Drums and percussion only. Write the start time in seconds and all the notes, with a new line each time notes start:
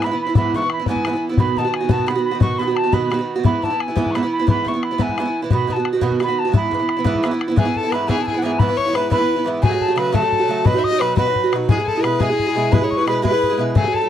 0.02 bodhran
0.35 bodhran
0.53 bodhran
0.70 bodhran
0.86 bodhran
0.96 bodhran
1.05 bodhran
1.38 bodhran
1.57 bodhran
1.74 bodhran
1.89 bodhran
1.99 bodhran
2.08 bodhran
2.41 bodhran
2.77 bodhran
2.93 bodhran
3.12 bodhran
3.45 bodhran
3.63 bodhran
3.80 bodhran
3.97 bodhran
4.06 bodhran
4.15 bodhran
4.48 bodhran
4.66 bodhran
4.83 bodhran
4.99 bodhran
5.09 bodhran
5.18 bodhran
5.51 bodhran
5.69 bodhran
5.85 bodhran
6.02 bodhran
6.11 bodhran
6.20 bodhran
6.54 bodhran
6.72 bodhran
6.89 bodhran
7.05 bodhran
7.15 bodhran
7.24 bodhran
7.41 bodhran
7.57 bodhran
7.76 bodhran
7.92 bodhran
8.10 bodhran
8.28 bodhran
8.60 bodhran
8.79 bodhran
8.95 bodhran
9.12 bodhran
9.63 bodhran
9.81 bodhran
9.98 bodhran
10.14 bodhran
10.32 bodhran
10.66 bodhran
10.84 bodhran
11.01 bodhran
11.17 bodhran
11.36 bodhran
11.53 bodhran
11.69 bodhran
11.88 bodhran
12.04 bodhran
12.20 bodhran
12.39 bodhran
12.73 bodhran
12.92 bodhran
13.08 bodhran
13.25 bodhran
13.43 bodhran
13.76 bodhran
13.94 bodhran